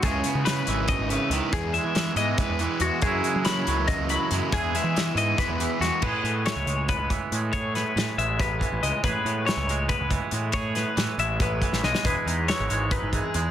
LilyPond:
<<
  \new Staff \with { instrumentName = "Clean electric guitar" } { \time 7/8 \key a \lydian \tempo 4 = 140 gis'4 b'4 dis''8 b'4 | gis'8 e''4 dis''8 b'4 fis'8 | gis'4 b''4 dis''8 b''4 | gis'8 e''4 dis''8 b'4 fis'8 |
b'4 cis''4 b'8 r4 | cis''8 b'4 e''8 b'4 dis''8 | b'4 cis''4 b'8 r4 | cis''8 b'4 e''8 b'4 dis''8 |
b'4 cis''4 b'8 gis'4 | }
  \new Staff \with { instrumentName = "Overdriven electric guitar" } { \time 7/8 \key a \lydian <cis gis cis' e'>8 <gis cis' e'>8 <cis gis cis' e'>8 <cis gis cis' e'>8 <cis gis cis' e'>8 <gis cis' e'>8 <cis gis cis' e'>8 | <e gis b e'>8 <gis b e'>8 <e gis b e'>8 <e gis b e'>8 <e gis b e'>8 <gis b e'>8 <e gis b e'>8 | <fis, cis e ais e'>8 <e ais e'>8 <cis e ais e'>8 <fis, cis e ais e'>8 <cis e ais e'>8 <e ais e'>8 <fis, cis e ais e'>8 | <e gis b e'>8 <gis b e'>8 <e gis b e'>8 <e gis b e'>8 <e gis b e'>8 <gis b e'>8 <e gis b e'>8 |
r2. r8 | r2. r8 | r2. r8 | r2. r8 |
r2. r8 | }
  \new Staff \with { instrumentName = "Clean electric guitar" } { \clef bass \time 7/8 \key a \lydian << { r8 b2. | r8 gis2~ gis8 gis8 | <fis gis e'>8 gis2~ gis8 gis8 | <e gis gis'>8 gis2~ gis8 gis8 |
<e gis b gis'>8 b4 gis8 b4 gis8 | gis'8 b4 gis8 b4 gis8 | gis'8 b4 gis8 b4 gis8 | gis'8 b4 gis8 b4 gis8 |
gis'8 dis'4 gis8 dis'4 gis8 | } \\ { cis4. e8 b,8 cis8 dis8 | e,4. e4 e4 | fis,4. fis4 fis4 | e,4. e4 e4 |
a,4 e4. e4 | a,4 e4. e4 | a,4 e4. e4 | a,4 e4. e4 |
e,4 e4. e4 | } >> }
  \new Staff \with { instrumentName = "Picked electric bass" } { \clef bass \time 7/8 \key a \lydian cis,8 r16 cis8. gis,,8. gis,,8 r16 cis,16 r16 | e,8. e8. gis,8 r16 e,8 r16 e,16 r16 | fis,8 r16 fis8. cis,8. cis,8 r16 fis,16 r16 | e,8. e8. gis,8 r16 e,8 r16 e,16 r16 |
a,,16 r16 a,8. cis,16 cis,8. cis,8 r16 a,8~ | a,4 a,16 r16 a,,4~ a,,16 a,,16 cis,16 r16 | a,,16 r16 a,8. cis,16 cis,8. cis,8 r16 a,8~ | a,4 a,16 r16 a,,4~ a,,16 a,,16 b,,16 r16 |
e,,16 r16 e,8. gis,,16 gis,,8. gis,,8 r16 e,8 | }
  \new DrumStaff \with { instrumentName = "Drums" } \drummode { \time 7/8 <hh bd>8 hh8 <hh sn>8 hh8 <hh bd>8 hh8 hh8 | <hh bd>8 hh8 <hh sn>8 hh8 <hh bd>8 hh8 hh8 | <hh bd>8 hh8 <hh sn>8 hh8 <hh bd>8 hh8 hh8 | <hh bd>8 hh8 <hh sn>8 hh8 <hh bd sn>8 hh8 <hh sn>8 |
<cymc bd>8 hh8 <hh sn>8 hh8 <hh bd>8 <hh bd>8 hh8 | <hh bd>8 <hh sn>8 <hh sn>8 hh8 <hh bd sn>8 <hh bd>8 hh8 | <hh bd>8 hh8 <hh sn>8 hh8 <hh bd>8 <hh bd>8 hh8 | <hh bd>8 <hh sn>8 <hh sn>8 hh8 <hh bd>8 <hh bd>16 sn16 sn16 sn16 |
<hh bd>8 hh8 <hh sn>8 hh8 <hh bd>8 <hh bd>8 hh8 | }
>>